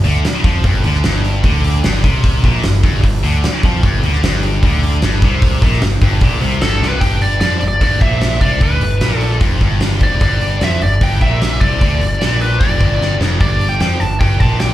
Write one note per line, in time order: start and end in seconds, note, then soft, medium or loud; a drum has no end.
0.05 0.23 D2 medium
0.05 0.24 D3 loud
0.05 open hi-hat soft
0.25 muted distorted electric guitar stroke medium
0.25 muted picked electric bass stroke soft
0.25 snare loud
0.25 open hi-hat medium
0.44 0.63 F2 medium
0.44 0.64 F3 loud
0.44 kick medium
0.44 open hi-hat medium
0.64 0.83 G1 medium
0.64 0.84 G2 loud
0.64 kick loud
0.64 open hi-hat medium
0.84 1.04 D2 medium
0.84 1.04 D3 loud
0.84 open hi-hat medium
0.94 snare soft
1.04 1.42 G1 medium
1.04 1.44 G2 loud
1.04 snare loud
1.04 open hi-hat medium
1.25 open hi-hat soft
1.44 1.81 D2 medium
1.44 1.84 D3 medium
1.44 kick loud
1.44 open hi-hat medium
1.64 open hi-hat medium
1.83 2.03 G1 medium
1.83 2.03 G2 medium
1.83 snare loud
1.83 open hi-hat medium
2.04 2.41 C2 medium
2.04 2.43 C3 medium
2.04 kick loud
2.04 open hi-hat medium
2.24 kick loud
2.24 open hi-hat medium
2.43 2.62 A#1 loud
2.43 2.63 A#2 medium
2.43 kick medium
2.43 open hi-hat medium
2.63 2.83 G1 medium
2.63 2.80 G2 medium
2.63 snare loud
2.63 open hi-hat medium
2.83 3.02 G1 medium
2.83 3.03 G2 loud
2.83 kick loud
2.83 open hi-hat medium
3.03 3.22 G1 medium
3.03 3.20 G2 medium
3.03 kick medium
3.03 open hi-hat medium
3.23 3.42 D2 medium
3.23 3.43 D3 loud
3.23 open hi-hat soft
3.44 muted picked electric bass stroke soft
3.44 muted distorted electric guitar stroke medium
3.44 snare loud
3.44 open hi-hat medium
3.63 3.82 F2 medium
3.63 3.83 F3 loud
3.63 kick loud
3.63 open hi-hat medium
3.83 4.02 G1 medium
3.83 4.03 G2 medium
3.83 kick loud
3.83 open hi-hat medium
4.03 4.22 D2 medium
4.03 4.23 D3 medium
4.03 open hi-hat soft
4.13 snare soft
4.22 4.60 G1 medium
4.22 4.63 G2 loud
4.22 snare loud
4.22 open hi-hat medium
4.43 open hi-hat medium
4.63 5.00 D2 medium
4.63 5.03 D3 loud
4.63 kick loud
4.63 open hi-hat medium
4.83 open hi-hat soft
5.02 5.21 G1 medium
5.02 5.23 G2 medium
5.02 snare loud
5.02 open hi-hat medium
5.22 5.60 C2 medium
5.22 5.62 C3 loud
5.22 kick loud
5.22 snare soft
5.22 open hi-hat medium
5.42 kick loud
5.42 open hi-hat medium
5.62 5.81 A#1 loud
5.62 5.82 A#2 loud
5.62 kick loud
5.62 open hi-hat medium
5.72 snare soft
5.82 6.01 G1 medium
5.82 5.99 G2 medium
5.82 snare medium
5.82 open hi-hat medium
6.01 6.21 G1 medium
6.01 6.22 G2 loud
6.01 kick medium
6.01 open hi-hat medium
6.21 6.40 A#1 medium
6.21 6.41 A#2 loud
6.21 kick loud
6.21 open hi-hat medium
6.41 6.60 C2 medium
6.41 6.61 C3 loud
6.41 open hi-hat medium
6.61 6.80 G1 medium
6.61 6.82 G2 medium
6.61 6.88 A4 medium
6.61 snare loud
6.61 open hi-hat medium
6.80 7.00 C2 medium
6.80 7.01 C3 medium
6.80 snare medium
6.88 7.02 B4 medium
7.01 7.39 G1 medium
7.01 7.41 G2 medium
7.01 7.22 G5 loud
7.01 kick medium
7.01 open hi-hat medium
7.21 7.40 D5 medium
7.21 open hi-hat soft
7.41 7.60 F2 medium
7.41 7.61 F3 medium
7.41 7.66 D5 medium
7.41 snare loud
7.41 open hi-hat medium
7.61 7.81 G1 medium
7.61 7.78 G2 medium
7.61 open hi-hat soft
7.68 7.82 D5 medium
7.81 8.00 G1 medium
7.81 8.01 G2 loud
7.81 8.01 D5 medium
7.81 kick medium
7.81 open hi-hat medium
8.01 8.39 A#1 medium
8.01 8.41 A#2 medium
8.01 8.41 E5 medium
8.01 kick medium
8.01 open hi-hat soft
8.21 snare medium
8.21 open hi-hat medium
8.41 8.60 C2 medium
8.41 8.61 C3 medium
8.41 8.62 D5 medium
8.41 kick medium
8.41 open hi-hat medium
8.61 8.80 D2 medium
8.61 8.81 D3 medium
8.61 9.17 B4 medium
8.61 kick medium
8.61 open hi-hat medium
8.81 9.00 G1 medium
8.81 8.98 G2 medium
8.81 open hi-hat medium
9.00 9.38 A#1 medium
9.00 9.41 A#2 medium
9.00 snare medium
9.00 open hi-hat medium
9.17 9.38 A4 medium
9.17 open hi-hat soft
9.41 9.60 F1 medium
9.41 9.61 F2 medium
9.41 kick loud
9.41 open hi-hat medium
9.61 9.98 G1 medium
9.61 10.01 G2 loud
9.61 kick medium
9.61 open hi-hat soft
9.81 snare loud
9.81 open hi-hat medium
10.00 10.20 F1 medium
10.00 10.21 F2 medium
10.00 10.21 D5 medium
10.00 kick medium
10.00 open hi-hat soft
10.21 10.58 G1 medium
10.21 10.61 G2 loud
10.21 10.63 D5 medium
10.21 kick loud
10.21 open hi-hat medium
10.41 open hi-hat soft
10.61 10.80 F2 medium
10.61 10.81 F3 loud
10.61 10.83 E5 medium
10.61 snare medium
10.61 open hi-hat medium
10.82 11.00 G1 medium
10.82 10.98 G2 medium
10.82 11.03 D5 medium
10.82 open hi-hat soft
11.01 11.20 G1 medium
11.01 11.21 G2 loud
11.01 11.22 G5 medium
11.01 kick loud
11.01 open hi-hat medium
11.21 11.59 A#1 medium
11.21 11.61 A#2 loud
11.21 11.63 E5 medium
11.21 kick medium
11.21 open hi-hat soft
11.42 snare medium
11.42 open hi-hat medium
11.60 11.80 C2 medium
11.60 11.81 C3 medium
11.60 12.41 D5 medium
11.60 kick loud
11.60 open hi-hat soft
11.81 12.00 D2 medium
11.81 12.01 D3 medium
11.81 kick loud
11.81 open hi-hat medium
12.01 12.20 G1 medium
12.01 12.18 G2 medium
12.01 open hi-hat medium
12.21 12.58 A#1 medium
12.21 12.61 A#2 medium
12.21 snare loud
12.21 open hi-hat medium
12.41 12.60 B4 medium
12.41 open hi-hat soft
12.60 12.80 F1 medium
12.60 12.81 F2 loud
12.60 13.16 D5 medium
12.60 kick loud
12.60 open hi-hat medium
12.80 13.18 G1 medium
12.80 13.20 G2 medium
12.80 kick medium
12.80 open hi-hat soft
13.01 snare medium
13.20 13.39 F1 medium
13.20 13.40 F2 medium
13.20 snare medium
13.40 13.78 G1 medium
13.40 13.80 G2 medium
13.40 13.68 D5 medium
13.40 kick loud
13.40 open hi-hat medium
13.61 open hi-hat soft
13.69 13.80 G5 medium
13.80 13.99 F2 medium
13.80 14.00 F3 loud
13.80 14.00 G5 medium
13.80 snare medium
13.80 open hi-hat medium
14.00 14.20 G1 medium
14.00 14.17 G2 medium
14.00 14.20 A5 medium
14.00 open hi-hat soft
14.20 14.39 G1 medium
14.20 14.40 G2 medium
14.20 14.40 G5 medium
14.20 kick loud
14.20 open hi-hat medium
14.40 14.74 A#1 medium
14.40 14.74 A#2 loud
14.40 14.60 A5 medium
14.40 kick medium
14.40 open hi-hat soft
14.60 14.74 G5 loud
14.60 snare loud
14.60 open hi-hat medium